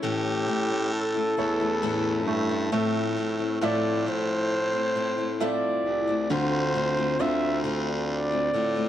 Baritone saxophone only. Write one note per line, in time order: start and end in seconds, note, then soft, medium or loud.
0.03 1.33 A2 loud
1.38 2.28 E2 medium
2.27 2.68 G2 medium
2.72 3.57 A2 medium
3.61 5.54 A2 loud
5.85 6.27 C2 medium
6.30 7.15 D2 loud
7.19 8.50 D2 medium
8.53 8.89 A2 medium